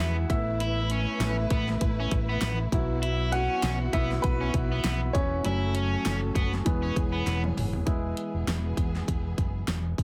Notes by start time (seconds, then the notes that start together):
Already playing: F#3 G#3 B3 E4 F#4 G#4 E5 F#5 G#5
0.00 E2
0.29 A1 A3 B3 E4 B4 E5, kick, closed hi-hat
0.60 E4, closed hi-hat
0.90 C#4, closed hi-hat
1.19 A1 A3 B3 E4, snare, closed hi-hat
1.50 A1 B3, kick, closed hi-hat
1.68 snare
1.81 A1, kick, closed hi-hat
2.00 C#4
2.11 A1, kick, closed hi-hat
2.29 B3
2.41 A1, snare, closed hi-hat
2.72 B1 F#3 B3 E4 F#4, kick, closed hi-hat
3.02 E4, closed hi-hat
3.32 C#4 F#4 F#5, closed hi-hat
3.63 B1, snare, closed hi-hat
3.93 B1 F#3 B3 E4 E5, kick, closed hi-hat
4.11 snare
4.22 B1 B3 B4, kick, closed hi-hat
4.41 C#4
4.54 B1, kick, closed hi-hat
4.72 B3
4.84 B1, snare, closed hi-hat
5.13 E1 C#4 C#5, kick, closed hi-hat
5.43 F#1 F#3 A3 C#4 E4 A4, closed hi-hat
5.75 C#4, closed hi-hat
6.05 F#1, snare, closed hi-hat
6.35 F#1 B3, kick, closed hi-hat
6.54 snare
6.65 E1 E3 G#3 B3 G#4, kick, closed hi-hat
6.82 C#4
6.96 E1, kick, closed hi-hat
7.12 B3
7.26 E1, snare, closed hi-hat
7.44 high tom
7.56 F#1, mid tom, open hi-hat
7.73 floor tom
7.85 E1 E3 G#3 B3 E4 G#4, kick, closed hi-hat
8.17 closed hi-hat
8.34 E1
8.47 E1, snare, closed hi-hat
8.77 E1, kick, closed hi-hat
8.95 snare
9.08 E1, kick, closed hi-hat
9.38 F#1, kick, closed hi-hat
9.67 E1, snare, closed hi-hat
9.98 E1, kick, closed hi-hat